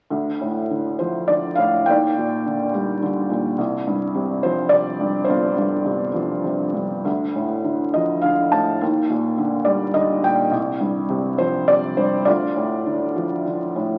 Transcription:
0.10 D2
0.41 A2
0.70 D3
0.99 F3 C5
1.28 D3 D5
1.55 A2 F5
1.86 D#2 G5
1.90 D5
2.17 A#2
2.46 D3
2.74 G3
3.02 D3
3.30 A#2
3.58 C2
3.87 G2
4.15 C3
4.43 F3 C5
4.69 C3 D5
5.01 G2
5.24 G1 C5
5.30 F4
5.57 G2
5.85 C3
6.14 F3
6.44 C3
6.74 G2
7.05 D2
7.35 A2
7.64 D3
7.94 F3 D#5
8.22 D3 F5
8.52 A2 A5
8.81 D#2
9.10 A#2
9.38 D3
9.65 G3 D5
9.94 D3 D#5
10.23 A#2 G5
10.51 C2
10.80 G2
11.09 C3
11.38 F3 C5
11.68 C3 D5
11.97 G2 C5
12.25 D2 F4 D5
12.56 A2
12.86 D3
13.16 F3
13.46 D3
13.76 A2

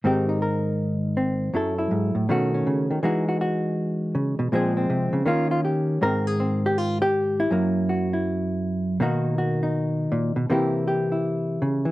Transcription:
0.04 G#2 D#3 C4 D#4 G4
0.29 D#4
0.42 A#4
1.17 C4
1.54 F#2 F#3 E4 A4
1.78 E4
1.91 G#2
2.15 A2
2.29 B2 D#3 A3 C#4 F#4
2.54 C#4
2.67 C#3
2.91 D#3
3.03 E3 G#3 D#4 F#4
3.29 F#4
3.41 F#4
4.15 C#3
4.39 B2
4.52 A#2 F3 G#3 C4 G#4
4.77 C4
4.90 C3
5.13 C#3
5.26 D#3 A#3 C#4 F4
5.51 F4
5.65 G4
6.02 G#2 D#3 C4 A#4
6.27 G#4
6.40 C4
6.66 G4
6.78 F4
7.02 G4
7.40 E4
7.51 F#2 F#3 A#3
7.89 F#4
8.13 E4
9.00 B2 D#3 A#3 D#4 F#4
9.38 F#4
9.63 D#4
10.12 A#2
10.36 B2
10.50 C3 E3 A#3 E4 G4
10.88 G4
11.12 E4
11.62 C#3
11.85 E3

